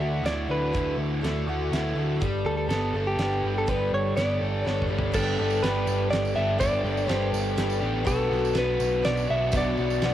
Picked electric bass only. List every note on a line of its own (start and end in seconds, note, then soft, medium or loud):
0.00 0.22 D2 medium
0.23 0.46 D2 medium
0.49 0.72 D2 medium
0.75 0.97 D2 medium
0.98 1.20 D2 medium
1.23 1.46 D2 medium
1.46 1.69 D2 medium
1.72 1.94 D2 medium
1.95 2.18 D2 medium
2.22 2.44 G1 medium
2.44 2.67 D2 medium
2.68 2.91 G1 medium
2.94 3.16 G1 medium
3.17 3.40 G1 medium
3.44 3.66 G1 medium
3.68 3.90 G1 medium
3.93 4.15 G1 medium
4.16 4.39 G1 medium
4.42 4.64 G1 medium
4.66 4.88 G1 medium
4.91 5.13 G1 medium
5.14 5.36 G1 medium
5.39 5.61 G1 medium
5.63 5.85 G1 medium
5.87 6.09 G1 medium
6.12 6.33 G1 medium
6.37 6.58 G1 medium
6.61 6.82 G1 medium
6.84 7.06 G1 medium
7.09 7.31 G1 medium
7.33 7.55 G1 medium
7.58 7.79 G1 medium
7.82 8.04 A1 medium
8.07 8.28 B1 medium
8.31 8.53 B1 medium
8.56 8.77 B1 medium
8.80 9.01 B1 medium
9.05 9.26 B1 medium
9.30 9.50 B1 medium
9.53 9.74 B1 medium
9.78 9.99 B1 medium
10.02 10.14 B1 medium